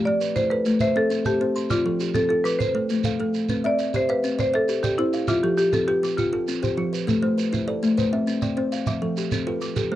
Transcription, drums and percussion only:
0.21 shekere
0.36 shekere
0.66 shekere
0.80 shekere
1.11 shekere
1.25 shekere
1.56 shekere
1.70 shekere
2.00 shekere
2.14 shekere
2.46 shekere
2.60 shekere
2.90 shekere
3.04 shekere
3.34 shekere
3.49 shekere
3.79 shekere
3.94 shekere
4.24 shekere
4.39 shekere
4.69 shekere
4.84 shekere
5.13 shekere
5.28 shekere
5.58 shekere
5.73 shekere
6.04 shekere
6.18 shekere
6.48 shekere
6.64 shekere
6.94 shekere
7.08 shekere
7.39 shekere
7.54 shekere
7.83 shekere
7.98 shekere
8.27 shekere
8.42 shekere
8.73 shekere
8.86 shekere
9.17 shekere
9.32 shekere
9.61 shekere
9.76 shekere

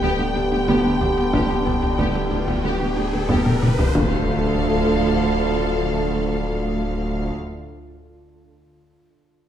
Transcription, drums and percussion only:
0.68 taiko
1.01 taiko low
1.33 taiko
1.66 taiko low
1.83 taiko low
1.98 taiko
2.48 taiko low
3.29 taiko low-mid
3.46 taiko mid
3.63 taiko mid
3.79 taiko low
3.95 taiko

